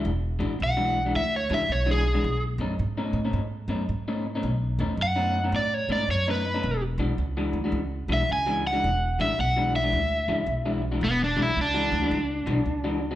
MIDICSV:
0, 0, Header, 1, 5, 480
1, 0, Start_track
1, 0, Tempo, 548446
1, 43, Time_signature, 4, 2, 24, 8
1, 11510, End_track
2, 0, Start_track
2, 0, Title_t, "Overdriven electric guitar"
2, 0, Program_c, 0, 29
2, 555, Note_on_c, 0, 78, 86
2, 1007, Note_off_c, 0, 78, 0
2, 1017, Note_on_c, 0, 76, 86
2, 1167, Note_off_c, 0, 76, 0
2, 1193, Note_on_c, 0, 73, 72
2, 1335, Note_off_c, 0, 73, 0
2, 1349, Note_on_c, 0, 76, 81
2, 1494, Note_off_c, 0, 76, 0
2, 1505, Note_on_c, 0, 73, 78
2, 1652, Note_off_c, 0, 73, 0
2, 1673, Note_on_c, 0, 68, 76
2, 2127, Note_off_c, 0, 68, 0
2, 4398, Note_on_c, 0, 78, 92
2, 4851, Note_off_c, 0, 78, 0
2, 4864, Note_on_c, 0, 74, 83
2, 5024, Note_off_c, 0, 74, 0
2, 5024, Note_on_c, 0, 73, 68
2, 5173, Note_off_c, 0, 73, 0
2, 5185, Note_on_c, 0, 74, 75
2, 5334, Note_off_c, 0, 74, 0
2, 5346, Note_on_c, 0, 73, 76
2, 5495, Note_off_c, 0, 73, 0
2, 5521, Note_on_c, 0, 71, 83
2, 5973, Note_off_c, 0, 71, 0
2, 7119, Note_on_c, 0, 76, 80
2, 7265, Note_off_c, 0, 76, 0
2, 7287, Note_on_c, 0, 80, 87
2, 7571, Note_off_c, 0, 80, 0
2, 7589, Note_on_c, 0, 78, 85
2, 8041, Note_off_c, 0, 78, 0
2, 8064, Note_on_c, 0, 76, 76
2, 8217, Note_off_c, 0, 76, 0
2, 8232, Note_on_c, 0, 78, 74
2, 8523, Note_off_c, 0, 78, 0
2, 8541, Note_on_c, 0, 76, 79
2, 9461, Note_off_c, 0, 76, 0
2, 9664, Note_on_c, 0, 59, 91
2, 9811, Note_off_c, 0, 59, 0
2, 9837, Note_on_c, 0, 62, 73
2, 9977, Note_off_c, 0, 62, 0
2, 9997, Note_on_c, 0, 64, 74
2, 10137, Note_off_c, 0, 64, 0
2, 10163, Note_on_c, 0, 62, 102
2, 11510, Note_off_c, 0, 62, 0
2, 11510, End_track
3, 0, Start_track
3, 0, Title_t, "Clean electric guitar"
3, 0, Program_c, 1, 27
3, 0, Note_on_c, 1, 52, 73
3, 88, Note_off_c, 1, 52, 0
3, 342, Note_on_c, 1, 52, 68
3, 342, Note_on_c, 1, 56, 75
3, 348, Note_on_c, 1, 62, 79
3, 352, Note_on_c, 1, 66, 80
3, 459, Note_off_c, 1, 52, 0
3, 459, Note_off_c, 1, 56, 0
3, 462, Note_off_c, 1, 62, 0
3, 464, Note_off_c, 1, 66, 0
3, 673, Note_on_c, 1, 66, 92
3, 675, Note_on_c, 1, 62, 87
3, 677, Note_on_c, 1, 56, 82
3, 685, Note_on_c, 1, 52, 80
3, 858, Note_off_c, 1, 66, 0
3, 859, Note_off_c, 1, 62, 0
3, 860, Note_off_c, 1, 56, 0
3, 864, Note_off_c, 1, 52, 0
3, 923, Note_on_c, 1, 66, 78
3, 928, Note_on_c, 1, 62, 78
3, 929, Note_on_c, 1, 56, 62
3, 933, Note_on_c, 1, 52, 64
3, 1053, Note_off_c, 1, 66, 0
3, 1056, Note_off_c, 1, 56, 0
3, 1056, Note_off_c, 1, 62, 0
3, 1059, Note_off_c, 1, 52, 0
3, 1317, Note_on_c, 1, 56, 86
3, 1318, Note_on_c, 1, 52, 79
3, 1325, Note_on_c, 1, 62, 91
3, 1330, Note_on_c, 1, 66, 96
3, 1427, Note_off_c, 1, 56, 0
3, 1428, Note_off_c, 1, 52, 0
3, 1431, Note_off_c, 1, 62, 0
3, 1434, Note_off_c, 1, 66, 0
3, 1629, Note_on_c, 1, 66, 78
3, 1633, Note_on_c, 1, 62, 83
3, 1635, Note_on_c, 1, 56, 80
3, 1637, Note_on_c, 1, 52, 73
3, 1780, Note_off_c, 1, 52, 0
3, 1783, Note_off_c, 1, 62, 0
3, 1784, Note_off_c, 1, 56, 0
3, 1787, Note_off_c, 1, 66, 0
3, 1874, Note_on_c, 1, 66, 78
3, 1878, Note_on_c, 1, 56, 79
3, 1879, Note_on_c, 1, 62, 77
3, 1884, Note_on_c, 1, 52, 69
3, 1963, Note_off_c, 1, 66, 0
3, 1965, Note_off_c, 1, 56, 0
3, 1966, Note_off_c, 1, 62, 0
3, 1969, Note_off_c, 1, 52, 0
3, 2275, Note_on_c, 1, 47, 74
3, 2282, Note_on_c, 1, 57, 72
3, 2285, Note_on_c, 1, 61, 76
3, 2290, Note_on_c, 1, 63, 77
3, 2387, Note_off_c, 1, 47, 0
3, 2391, Note_off_c, 1, 57, 0
3, 2392, Note_off_c, 1, 61, 0
3, 2395, Note_off_c, 1, 63, 0
3, 2604, Note_on_c, 1, 63, 87
3, 2610, Note_on_c, 1, 61, 82
3, 2611, Note_on_c, 1, 57, 82
3, 2612, Note_on_c, 1, 47, 66
3, 2785, Note_off_c, 1, 63, 0
3, 2788, Note_off_c, 1, 61, 0
3, 2789, Note_off_c, 1, 47, 0
3, 2789, Note_off_c, 1, 57, 0
3, 2841, Note_on_c, 1, 63, 80
3, 2844, Note_on_c, 1, 61, 84
3, 2847, Note_on_c, 1, 57, 68
3, 2850, Note_on_c, 1, 47, 65
3, 2974, Note_off_c, 1, 63, 0
3, 2976, Note_off_c, 1, 61, 0
3, 2977, Note_off_c, 1, 57, 0
3, 2979, Note_off_c, 1, 47, 0
3, 3230, Note_on_c, 1, 47, 73
3, 3236, Note_on_c, 1, 57, 98
3, 3237, Note_on_c, 1, 61, 92
3, 3241, Note_on_c, 1, 63, 87
3, 3345, Note_off_c, 1, 47, 0
3, 3348, Note_off_c, 1, 57, 0
3, 3349, Note_off_c, 1, 61, 0
3, 3351, Note_off_c, 1, 63, 0
3, 3570, Note_on_c, 1, 63, 84
3, 3573, Note_on_c, 1, 61, 80
3, 3576, Note_on_c, 1, 57, 85
3, 3577, Note_on_c, 1, 47, 69
3, 3718, Note_off_c, 1, 47, 0
3, 3720, Note_off_c, 1, 57, 0
3, 3721, Note_off_c, 1, 63, 0
3, 3725, Note_off_c, 1, 61, 0
3, 3809, Note_on_c, 1, 63, 89
3, 3816, Note_on_c, 1, 61, 83
3, 3821, Note_on_c, 1, 47, 67
3, 3823, Note_on_c, 1, 57, 77
3, 3939, Note_off_c, 1, 63, 0
3, 3942, Note_off_c, 1, 61, 0
3, 3945, Note_off_c, 1, 47, 0
3, 3946, Note_off_c, 1, 57, 0
3, 4201, Note_on_c, 1, 47, 75
3, 4205, Note_on_c, 1, 57, 75
3, 4208, Note_on_c, 1, 61, 75
3, 4212, Note_on_c, 1, 63, 85
3, 4311, Note_off_c, 1, 47, 0
3, 4313, Note_off_c, 1, 57, 0
3, 4315, Note_off_c, 1, 61, 0
3, 4317, Note_off_c, 1, 63, 0
3, 4514, Note_on_c, 1, 63, 88
3, 4520, Note_on_c, 1, 61, 84
3, 4525, Note_on_c, 1, 57, 73
3, 4531, Note_on_c, 1, 47, 73
3, 4701, Note_off_c, 1, 63, 0
3, 4704, Note_off_c, 1, 61, 0
3, 4707, Note_off_c, 1, 57, 0
3, 4710, Note_off_c, 1, 47, 0
3, 4760, Note_on_c, 1, 63, 81
3, 4765, Note_on_c, 1, 61, 75
3, 4769, Note_on_c, 1, 57, 66
3, 4772, Note_on_c, 1, 47, 66
3, 4895, Note_off_c, 1, 63, 0
3, 4897, Note_off_c, 1, 61, 0
3, 4899, Note_off_c, 1, 57, 0
3, 4901, Note_off_c, 1, 47, 0
3, 5162, Note_on_c, 1, 47, 86
3, 5166, Note_on_c, 1, 57, 94
3, 5166, Note_on_c, 1, 61, 89
3, 5173, Note_on_c, 1, 63, 99
3, 5272, Note_off_c, 1, 47, 0
3, 5274, Note_off_c, 1, 57, 0
3, 5274, Note_off_c, 1, 61, 0
3, 5278, Note_off_c, 1, 63, 0
3, 5494, Note_on_c, 1, 63, 88
3, 5498, Note_on_c, 1, 61, 82
3, 5504, Note_on_c, 1, 57, 76
3, 5505, Note_on_c, 1, 47, 77
3, 5635, Note_off_c, 1, 47, 0
3, 5639, Note_off_c, 1, 57, 0
3, 5643, Note_off_c, 1, 61, 0
3, 5646, Note_off_c, 1, 63, 0
3, 5724, Note_on_c, 1, 63, 91
3, 5728, Note_on_c, 1, 61, 79
3, 5734, Note_on_c, 1, 57, 83
3, 5736, Note_on_c, 1, 47, 66
3, 5810, Note_off_c, 1, 63, 0
3, 5812, Note_off_c, 1, 61, 0
3, 5815, Note_off_c, 1, 57, 0
3, 5816, Note_off_c, 1, 47, 0
3, 6121, Note_on_c, 1, 52, 83
3, 6123, Note_on_c, 1, 62, 85
3, 6125, Note_on_c, 1, 56, 76
3, 6128, Note_on_c, 1, 66, 87
3, 6232, Note_off_c, 1, 52, 0
3, 6233, Note_off_c, 1, 62, 0
3, 6234, Note_off_c, 1, 56, 0
3, 6235, Note_off_c, 1, 66, 0
3, 6451, Note_on_c, 1, 66, 89
3, 6455, Note_on_c, 1, 56, 77
3, 6456, Note_on_c, 1, 62, 88
3, 6461, Note_on_c, 1, 52, 74
3, 6630, Note_off_c, 1, 66, 0
3, 6632, Note_off_c, 1, 56, 0
3, 6632, Note_off_c, 1, 62, 0
3, 6635, Note_off_c, 1, 52, 0
3, 6687, Note_on_c, 1, 66, 92
3, 6696, Note_on_c, 1, 62, 77
3, 6699, Note_on_c, 1, 52, 68
3, 6699, Note_on_c, 1, 56, 71
3, 6818, Note_off_c, 1, 66, 0
3, 6823, Note_off_c, 1, 62, 0
3, 6824, Note_off_c, 1, 52, 0
3, 6824, Note_off_c, 1, 56, 0
3, 7082, Note_on_c, 1, 52, 80
3, 7085, Note_on_c, 1, 56, 87
3, 7089, Note_on_c, 1, 62, 83
3, 7092, Note_on_c, 1, 66, 93
3, 7192, Note_off_c, 1, 52, 0
3, 7193, Note_off_c, 1, 56, 0
3, 7196, Note_off_c, 1, 62, 0
3, 7197, Note_off_c, 1, 66, 0
3, 7407, Note_on_c, 1, 66, 82
3, 7413, Note_on_c, 1, 62, 79
3, 7414, Note_on_c, 1, 56, 83
3, 7421, Note_on_c, 1, 52, 75
3, 7556, Note_off_c, 1, 52, 0
3, 7557, Note_off_c, 1, 56, 0
3, 7559, Note_off_c, 1, 66, 0
3, 7561, Note_off_c, 1, 62, 0
3, 7638, Note_on_c, 1, 66, 85
3, 7643, Note_on_c, 1, 62, 75
3, 7650, Note_on_c, 1, 56, 75
3, 7652, Note_on_c, 1, 52, 68
3, 7774, Note_off_c, 1, 66, 0
3, 7776, Note_off_c, 1, 62, 0
3, 7779, Note_off_c, 1, 56, 0
3, 7780, Note_off_c, 1, 52, 0
3, 8044, Note_on_c, 1, 52, 79
3, 8050, Note_on_c, 1, 62, 80
3, 8051, Note_on_c, 1, 56, 76
3, 8056, Note_on_c, 1, 66, 77
3, 8153, Note_off_c, 1, 52, 0
3, 8156, Note_off_c, 1, 56, 0
3, 8156, Note_off_c, 1, 62, 0
3, 8159, Note_off_c, 1, 66, 0
3, 8372, Note_on_c, 1, 66, 94
3, 8379, Note_on_c, 1, 62, 83
3, 8382, Note_on_c, 1, 56, 74
3, 8389, Note_on_c, 1, 52, 70
3, 8550, Note_off_c, 1, 66, 0
3, 8553, Note_off_c, 1, 62, 0
3, 8554, Note_off_c, 1, 56, 0
3, 8558, Note_off_c, 1, 52, 0
3, 8603, Note_on_c, 1, 66, 78
3, 8611, Note_on_c, 1, 62, 83
3, 8614, Note_on_c, 1, 56, 70
3, 8617, Note_on_c, 1, 52, 62
3, 8735, Note_off_c, 1, 66, 0
3, 8739, Note_off_c, 1, 62, 0
3, 8741, Note_off_c, 1, 56, 0
3, 8742, Note_off_c, 1, 52, 0
3, 9001, Note_on_c, 1, 52, 80
3, 9004, Note_on_c, 1, 56, 80
3, 9008, Note_on_c, 1, 62, 82
3, 9012, Note_on_c, 1, 66, 82
3, 9110, Note_off_c, 1, 52, 0
3, 9112, Note_off_c, 1, 56, 0
3, 9114, Note_off_c, 1, 62, 0
3, 9116, Note_off_c, 1, 66, 0
3, 9326, Note_on_c, 1, 66, 82
3, 9328, Note_on_c, 1, 56, 69
3, 9328, Note_on_c, 1, 62, 74
3, 9337, Note_on_c, 1, 52, 71
3, 9467, Note_off_c, 1, 56, 0
3, 9468, Note_off_c, 1, 52, 0
3, 9472, Note_off_c, 1, 66, 0
3, 9473, Note_off_c, 1, 62, 0
3, 9554, Note_on_c, 1, 66, 83
3, 9557, Note_on_c, 1, 62, 79
3, 9562, Note_on_c, 1, 56, 73
3, 9566, Note_on_c, 1, 52, 66
3, 9643, Note_off_c, 1, 66, 0
3, 9645, Note_off_c, 1, 62, 0
3, 9647, Note_off_c, 1, 56, 0
3, 9649, Note_off_c, 1, 52, 0
3, 9947, Note_on_c, 1, 52, 71
3, 9950, Note_on_c, 1, 56, 75
3, 9952, Note_on_c, 1, 66, 76
3, 9954, Note_on_c, 1, 62, 88
3, 10062, Note_off_c, 1, 52, 0
3, 10063, Note_off_c, 1, 56, 0
3, 10065, Note_off_c, 1, 62, 0
3, 10065, Note_off_c, 1, 66, 0
3, 10275, Note_on_c, 1, 66, 88
3, 10282, Note_on_c, 1, 62, 84
3, 10284, Note_on_c, 1, 56, 76
3, 10289, Note_on_c, 1, 52, 73
3, 10459, Note_off_c, 1, 66, 0
3, 10462, Note_off_c, 1, 62, 0
3, 10463, Note_off_c, 1, 56, 0
3, 10465, Note_off_c, 1, 52, 0
3, 10518, Note_on_c, 1, 66, 83
3, 10525, Note_on_c, 1, 62, 75
3, 10529, Note_on_c, 1, 56, 68
3, 10531, Note_on_c, 1, 52, 71
3, 10650, Note_off_c, 1, 66, 0
3, 10654, Note_off_c, 1, 62, 0
3, 10655, Note_off_c, 1, 56, 0
3, 10657, Note_off_c, 1, 52, 0
3, 10908, Note_on_c, 1, 52, 87
3, 10914, Note_on_c, 1, 56, 89
3, 10915, Note_on_c, 1, 62, 104
3, 10921, Note_on_c, 1, 66, 94
3, 11021, Note_off_c, 1, 52, 0
3, 11024, Note_off_c, 1, 56, 0
3, 11024, Note_off_c, 1, 62, 0
3, 11027, Note_off_c, 1, 66, 0
3, 11239, Note_on_c, 1, 66, 87
3, 11241, Note_on_c, 1, 62, 83
3, 11247, Note_on_c, 1, 56, 78
3, 11252, Note_on_c, 1, 52, 74
3, 11380, Note_off_c, 1, 52, 0
3, 11382, Note_off_c, 1, 56, 0
3, 11382, Note_off_c, 1, 62, 0
3, 11387, Note_off_c, 1, 66, 0
3, 11473, Note_on_c, 1, 66, 92
3, 11476, Note_on_c, 1, 62, 81
3, 11481, Note_on_c, 1, 56, 74
3, 11510, Note_off_c, 1, 56, 0
3, 11510, Note_off_c, 1, 62, 0
3, 11510, Note_off_c, 1, 66, 0
3, 11510, End_track
4, 0, Start_track
4, 0, Title_t, "Upright bass"
4, 0, Program_c, 2, 32
4, 41, Note_on_c, 2, 28, 81
4, 338, Note_off_c, 2, 28, 0
4, 353, Note_on_c, 2, 33, 76
4, 515, Note_off_c, 2, 33, 0
4, 525, Note_on_c, 2, 35, 77
4, 982, Note_off_c, 2, 35, 0
4, 1004, Note_on_c, 2, 38, 74
4, 1301, Note_off_c, 2, 38, 0
4, 1309, Note_on_c, 2, 37, 84
4, 1474, Note_off_c, 2, 37, 0
4, 1480, Note_on_c, 2, 35, 76
4, 1940, Note_off_c, 2, 35, 0
4, 1961, Note_on_c, 2, 35, 76
4, 2255, Note_off_c, 2, 35, 0
4, 2260, Note_on_c, 2, 42, 78
4, 2430, Note_off_c, 2, 42, 0
4, 2443, Note_on_c, 2, 44, 83
4, 2735, Note_off_c, 2, 44, 0
4, 2741, Note_on_c, 2, 45, 83
4, 2911, Note_off_c, 2, 45, 0
4, 2916, Note_on_c, 2, 44, 76
4, 3214, Note_off_c, 2, 44, 0
4, 3219, Note_on_c, 2, 42, 81
4, 3390, Note_off_c, 2, 42, 0
4, 3403, Note_on_c, 2, 44, 76
4, 3863, Note_off_c, 2, 44, 0
4, 3877, Note_on_c, 2, 35, 81
4, 4179, Note_off_c, 2, 35, 0
4, 4189, Note_on_c, 2, 40, 80
4, 4347, Note_off_c, 2, 40, 0
4, 4352, Note_on_c, 2, 42, 79
4, 4818, Note_off_c, 2, 42, 0
4, 4834, Note_on_c, 2, 45, 82
4, 5138, Note_off_c, 2, 45, 0
4, 5153, Note_on_c, 2, 44, 80
4, 5318, Note_off_c, 2, 44, 0
4, 5323, Note_on_c, 2, 42, 77
4, 5783, Note_off_c, 2, 42, 0
4, 5805, Note_on_c, 2, 28, 85
4, 6101, Note_off_c, 2, 28, 0
4, 6107, Note_on_c, 2, 35, 83
4, 6275, Note_off_c, 2, 35, 0
4, 6285, Note_on_c, 2, 37, 78
4, 6583, Note_off_c, 2, 37, 0
4, 6592, Note_on_c, 2, 38, 79
4, 6750, Note_off_c, 2, 38, 0
4, 6755, Note_on_c, 2, 37, 79
4, 7058, Note_off_c, 2, 37, 0
4, 7074, Note_on_c, 2, 35, 77
4, 7239, Note_off_c, 2, 35, 0
4, 7258, Note_on_c, 2, 37, 83
4, 7711, Note_off_c, 2, 37, 0
4, 7737, Note_on_c, 2, 28, 84
4, 8029, Note_off_c, 2, 28, 0
4, 8048, Note_on_c, 2, 33, 84
4, 8205, Note_off_c, 2, 33, 0
4, 8216, Note_on_c, 2, 35, 81
4, 8669, Note_off_c, 2, 35, 0
4, 8687, Note_on_c, 2, 38, 80
4, 8983, Note_off_c, 2, 38, 0
4, 8998, Note_on_c, 2, 37, 75
4, 9153, Note_off_c, 2, 37, 0
4, 9158, Note_on_c, 2, 35, 82
4, 9618, Note_off_c, 2, 35, 0
4, 9637, Note_on_c, 2, 28, 86
4, 9937, Note_off_c, 2, 28, 0
4, 9948, Note_on_c, 2, 35, 74
4, 10113, Note_off_c, 2, 35, 0
4, 10124, Note_on_c, 2, 37, 81
4, 10419, Note_off_c, 2, 37, 0
4, 10430, Note_on_c, 2, 38, 84
4, 10593, Note_off_c, 2, 38, 0
4, 10599, Note_on_c, 2, 37, 85
4, 10896, Note_off_c, 2, 37, 0
4, 10912, Note_on_c, 2, 35, 89
4, 11071, Note_off_c, 2, 35, 0
4, 11076, Note_on_c, 2, 37, 72
4, 11510, Note_off_c, 2, 37, 0
4, 11510, End_track
5, 0, Start_track
5, 0, Title_t, "Muted clean electric guitar strokes"
5, 515, Note_on_c, 9, 29, 43
5, 602, Note_off_c, 9, 29, 0
5, 1790, Note_on_c, 9, 29, 36
5, 1878, Note_off_c, 9, 29, 0
5, 2448, Note_on_c, 9, 29, 42
5, 2536, Note_off_c, 9, 29, 0
5, 3728, Note_on_c, 9, 29, 41
5, 3816, Note_off_c, 9, 29, 0
5, 4372, Note_on_c, 9, 29, 44
5, 4459, Note_off_c, 9, 29, 0
5, 5646, Note_on_c, 9, 29, 42
5, 5733, Note_off_c, 9, 29, 0
5, 6294, Note_on_c, 9, 29, 39
5, 6382, Note_off_c, 9, 29, 0
5, 7567, Note_on_c, 9, 29, 44
5, 7654, Note_off_c, 9, 29, 0
5, 8211, Note_on_c, 9, 29, 41
5, 8299, Note_off_c, 9, 29, 0
5, 9478, Note_on_c, 9, 29, 47
5, 9565, Note_off_c, 9, 29, 0
5, 10125, Note_on_c, 9, 29, 41
5, 10213, Note_off_c, 9, 29, 0
5, 11391, Note_on_c, 9, 29, 44
5, 11478, Note_off_c, 9, 29, 0
5, 11510, End_track
0, 0, End_of_file